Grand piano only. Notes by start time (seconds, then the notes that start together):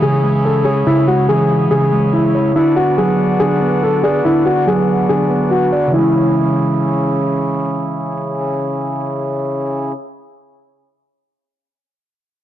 0.02 G#4
0.45 A4
0.65 G#4
0.87 E4
1.08 F#4
1.29 G#4
1.71 G#4
2.13 E4
2.56 E4
2.76 F#4
2.98 G#4
3.40 G#4
3.83 A4
4.03 G#4
4.25 E4
4.46 F#4
4.68 G#4
5.09 G#4
5.51 F#4
5.94 E4